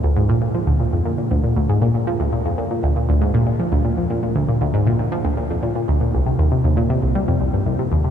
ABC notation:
X:1
M:4/4
L:1/16
Q:1/4=118
K:Bbmix
V:1 name="Synth arpeggio sound" clef=bass
D,, A,, B,, B,, F, D,, B,, F,, B,, B,, D,, B,, D,, A,, B,, B,, | F, D,, B,, F,, B,, B,, D,, B,, D,, A,, B,, B,, F, D,, B,, F,, | B,, B,, D,, B,, D,, A,, B,, B,, F, D,, B,, F,, B,, B,, D,, B,, | C,, C, E,, C, E,, B,, C, C,, G, F,, C,, G,, C,, C, E,, C, |]